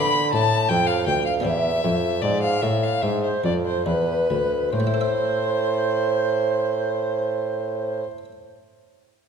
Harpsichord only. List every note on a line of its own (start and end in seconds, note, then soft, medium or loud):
0.00 0.29 D3 medium
0.00 1.39 B3 medium
0.00 1.39 F4 medium
0.00 1.40 B4 medium
0.33 0.66 A2 medium
0.70 1.03 F2 medium
1.07 1.41 D2 medium
1.40 1.80 B3 soft
1.40 4.68 D4 medium
1.40 4.68 G#4 medium
1.45 1.80 E2 medium
1.84 2.19 F2 medium
2.22 2.58 G#2 medium
2.63 2.99 A2 medium
3.03 3.40 G#2 medium
3.44 3.82 F2 medium
3.86 4.26 E2 medium
4.30 4.70 D2 medium
4.73 8.03 A2 medium
4.80 8.11 A3 medium
4.87 8.18 E4 medium
4.94 8.25 A4 medium
5.01 8.32 E5 medium